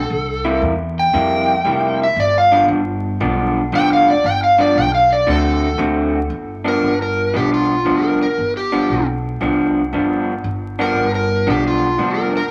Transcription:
Already playing: A4
0.10 C2
0.45 C3 G3 A#3 E4
0.62 E2
1.00 G5
1.14 F2 C3 G3 A#3 E4
1.64 F1 C3 G3 A#3 E4
2.03 E5
2.16 G1 D5
2.38 F5
2.52 G2 F3 B3 D4
2.68 G1
3.21 B1 G2 F3 B3 D4
3.72 F1 G2 F3 B3 D4 G5
3.93 F5
4.10 D5
4.24 G1 G5
4.44 F5
4.58 G2 F3 B3 D4 D5
4.76 B1 G5
4.95 F5
5.12 D5
5.27 D2 D3 A3 C4 F#4 A4
5.78 D2 D3 A3 C4 F#4
6.30 G1
6.65 G2 F3 B3 D4 A#4
6.82 G1
7.02 A#4
7.34 B1 G2 F3 B3 D4 G4
7.54 F4
7.85 F1 G2 F3 B3 D4
8.05 A#4
8.23 A#4
8.38 G1
8.57 G4
8.72 G2 F3 B3 D4
8.89 B1
9.41 C2 G2 F3 B3 D4
9.93 G1 G2 F3 B3 D4
10.44 G1
10.79 G2 F3 B3 D4 A#4
10.96 G1
11.15 A#4
11.47 B1 G2 F3 B3 D4 G4
11.68 F4
11.98 F1 G2 F3 B3 D4
12.19 A#4
12.37 A#4

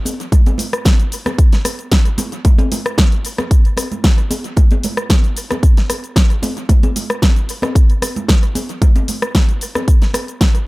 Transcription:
0.05 open hi-hat, high conga, shaker
0.20 closed hi-hat, shaker
0.32 kick, closed hi-hat, low conga, shaker
0.46 closed hi-hat, high conga, shaker
0.58 open hi-hat, low conga, shaker
0.73 cross-stick, closed hi-hat, shaker
0.85 kick, snare, closed hi-hat, high conga, shaker
1.00 closed hi-hat, shaker
1.12 open hi-hat, shaker
1.26 cross-stick, closed hi-hat, high conga, shaker
1.38 kick, closed hi-hat, shaker
1.52 snare, closed hi-hat, shaker
1.65 cross-stick, open hi-hat, high conga, shaker
1.79 closed hi-hat, shaker
1.92 kick, snare, closed hi-hat, shaker
2.05 closed hi-hat, shaker
2.18 open hi-hat, high conga, low conga, shaker
2.32 closed hi-hat, shaker
2.45 kick, closed hi-hat, low conga, shaker
2.58 closed hi-hat, high conga, shaker
2.72 open hi-hat, low conga, shaker
2.86 cross-stick, closed hi-hat, shaker
2.98 kick, snare, closed hi-hat, high conga, shaker
3.12 closed hi-hat, shaker
3.25 open hi-hat, shaker
3.38 cross-stick, closed hi-hat, high conga, shaker
3.51 kick, closed hi-hat, shaker
3.65 closed hi-hat, shaker
3.77 cross-stick, open hi-hat, high conga, shaker
3.91 closed hi-hat, low conga, shaker
4.04 kick, snare, closed hi-hat, shaker
4.18 closed hi-hat, shaker
4.31 open hi-hat, high conga, shaker
4.44 closed hi-hat, shaker
4.57 kick, closed hi-hat, low conga, shaker
4.71 closed hi-hat, high conga, shaker
4.83 open hi-hat, low conga, shaker
4.97 cross-stick, closed hi-hat, shaker
5.09 kick, snare, closed hi-hat, high conga, shaker
5.24 closed hi-hat, shaker
5.37 open hi-hat, shaker
5.51 cross-stick, closed hi-hat, high conga, shaker
5.63 kick, closed hi-hat, shaker
5.77 snare, closed hi-hat, shaker
5.90 cross-stick, open hi-hat, high conga, shaker
6.04 closed hi-hat, shaker
6.16 kick, snare, closed hi-hat, shaker
6.30 closed hi-hat, shaker
6.42 open hi-hat, high conga, low conga, shaker
6.57 closed hi-hat, shaker
6.69 kick, closed hi-hat, low conga, shaker
6.83 closed hi-hat, high conga, shaker
6.96 open hi-hat, low conga, shaker
7.10 cross-stick, closed hi-hat, shaker
7.22 kick, snare, closed hi-hat, high conga, shaker
7.36 closed hi-hat, shaker
7.49 open hi-hat, shaker
7.62 cross-stick, closed hi-hat, high conga, shaker
7.75 kick, closed hi-hat, shaker
7.90 closed hi-hat, shaker
8.02 cross-stick, open hi-hat, high conga, shaker
8.16 closed hi-hat, low conga, shaker
8.28 kick, snare, closed hi-hat, shaker
8.43 closed hi-hat, shaker
8.55 open hi-hat, high conga, shaker
8.69 closed hi-hat, shaker
8.82 kick, closed hi-hat, low conga, shaker
8.96 closed hi-hat, high conga, shaker
9.08 open hi-hat, low conga, shaker
9.22 cross-stick, closed hi-hat, shaker
9.35 kick, snare, closed hi-hat, high conga, shaker
9.49 closed hi-hat, shaker
9.61 open hi-hat, shaker
9.75 cross-stick, closed hi-hat, high conga, shaker
9.88 kick, closed hi-hat, shaker
10.02 snare, closed hi-hat, shaker
10.14 cross-stick, open hi-hat, high conga, shaker
10.28 closed hi-hat, shaker
10.41 kick, snare, closed hi-hat, shaker
10.55 closed hi-hat, shaker

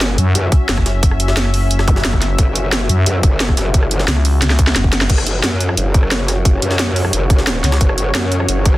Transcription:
Already playing: F#1 C#4 F#4 E5
0.01 snare, closed hi-hat
0.18 F#2, closed hi-hat
0.35 F#2, closed hi-hat
0.52 kick, closed hi-hat
0.69 F#1, snare, closed hi-hat
0.77 kick, cross-stick
0.86 snare, closed hi-hat
1.03 kick, closed hi-hat
1.11 cross-stick
1.20 closed hi-hat
1.28 snare
1.37 snare, closed hi-hat
1.45 cross-stick
1.54 closed hi-hat, open hi-hat
1.71 closed hi-hat
1.79 cross-stick, snare
1.88 kick, closed hi-hat, zap
1.96 snare
2.05 F#1, snare, closed hi-hat
2.13 kick, cross-stick
2.22 snare, closed hi-hat
2.39 F#1, kick, closed hi-hat
2.55 closed hi-hat
2.72 snare, closed hi-hat
2.89 F#2, closed hi-hat
3.06 F#2, closed hi-hat
3.23 F#1, kick, closed hi-hat
3.40 snare, closed hi-hat
3.49 kick, cross-stick
3.57 F#1, snare, closed hi-hat
3.74 kick, closed hi-hat
3.83 cross-stick
3.91 closed hi-hat
4.00 snare
4.08 C#2, snare, closed hi-hat
4.16 cross-stick
4.25 closed hi-hat, open hi-hat
4.42 C#2, snare, closed hi-hat
4.50 snare
4.59 kick, closed hi-hat
4.67 snare
4.76 F#1, snare, closed hi-hat
4.84 kick
4.93 snare, closed hi-hat
5.01 snare
5.10 F#1 C#4 F#4 C#5, kick, closed hi-hat, crash
5.18 cross-stick
5.27 closed hi-hat
5.43 F#2, snare, closed hi-hat
5.60 closed hi-hat
5.69 cross-stick
5.77 F#1, closed hi-hat
5.94 kick, closed hi-hat
6.03 cross-stick
6.11 snare, closed hi-hat
6.28 cross-stick, snare, closed hi-hat
6.45 kick, closed hi-hat
6.62 F#2, closed hi-hat
6.71 snare
6.79 snare, closed hi-hat
6.96 closed hi-hat, open hi-hat
7.05 cross-stick
7.13 F#1, closed hi-hat
7.30 kick, closed hi-hat
7.38 snare
7.47 snare, closed hi-hat
7.64 C#2, snare, closed hi-hat
7.72 cross-stick, snare, closed hi-hat
7.81 F#1, kick, closed hi-hat
7.89 cross-stick
7.98 closed hi-hat
8.15 F#2, snare, closed hi-hat
8.32 closed hi-hat
8.40 cross-stick
8.48 F#1, closed hi-hat
8.65 kick, closed hi-hat
8.74 cross-stick

